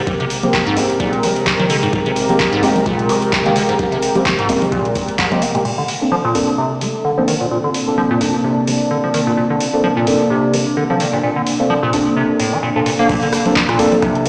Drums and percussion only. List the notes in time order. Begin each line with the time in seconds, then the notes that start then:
0.07 kick, closed hi-hat
0.20 closed hi-hat
0.30 open hi-hat, shaker
0.43 closed hi-hat, low conga, shaker
0.53 kick, clap, closed hi-hat, shaker
0.67 closed hi-hat
0.77 open hi-hat, shaker
0.90 closed hi-hat, shaker
1.00 kick, closed hi-hat, shaker
1.13 closed hi-hat
1.23 open hi-hat, shaker
1.36 closed hi-hat, shaker
1.46 kick, clap, closed hi-hat
1.60 closed hi-hat, low conga
1.70 open hi-hat, shaker
1.83 closed hi-hat, shaker
1.93 kick, closed hi-hat
2.06 closed hi-hat
2.16 open hi-hat, shaker
2.29 closed hi-hat, low conga, shaker
2.39 kick, clap, closed hi-hat
2.53 closed hi-hat
2.63 open hi-hat, shaker
2.76 closed hi-hat, low conga, shaker
2.85 kick, closed hi-hat, shaker
2.99 closed hi-hat
3.09 open hi-hat, shaker
3.22 closed hi-hat, shaker
3.33 kick, clap, closed hi-hat, shaker
3.46 closed hi-hat
3.56 open hi-hat, shaker
3.69 closed hi-hat, shaker
3.79 kick, closed hi-hat, shaker
3.92 closed hi-hat
4.02 open hi-hat, shaker
4.15 closed hi-hat, low conga, shaker
4.26 kick, clap, closed hi-hat, shaker
4.39 closed hi-hat
4.49 open hi-hat, shaker
4.62 closed hi-hat, low conga, shaker
4.72 kick, closed hi-hat, shaker
4.85 closed hi-hat
4.95 kick, open hi-hat, shaker
5.08 closed hi-hat, shaker
5.19 kick, clap, closed hi-hat, shaker
5.32 closed hi-hat, low conga
5.42 open hi-hat, shaker
5.55 closed hi-hat, shaker
5.65 crash
5.88 open hi-hat
6.35 open hi-hat
6.81 open hi-hat
7.28 open hi-hat
7.74 open hi-hat
8.21 open hi-hat
8.67 open hi-hat
9.14 open hi-hat
9.60 open hi-hat
10.07 open hi-hat
10.54 open hi-hat
11.00 open hi-hat
11.47 open hi-hat
11.93 open hi-hat
12.40 open hi-hat
12.86 open hi-hat
13.09 kick, closed hi-hat, crash, shaker
13.22 closed hi-hat
13.33 cross-stick, open hi-hat, shaker
13.45 closed hi-hat, low conga, shaker
13.56 kick, clap, closed hi-hat
13.69 cross-stick, closed hi-hat
13.79 open hi-hat, shaker
13.92 closed hi-hat, low conga, shaker
14.02 kick, cross-stick, closed hi-hat, shaker
14.15 closed hi-hat
14.26 open hi-hat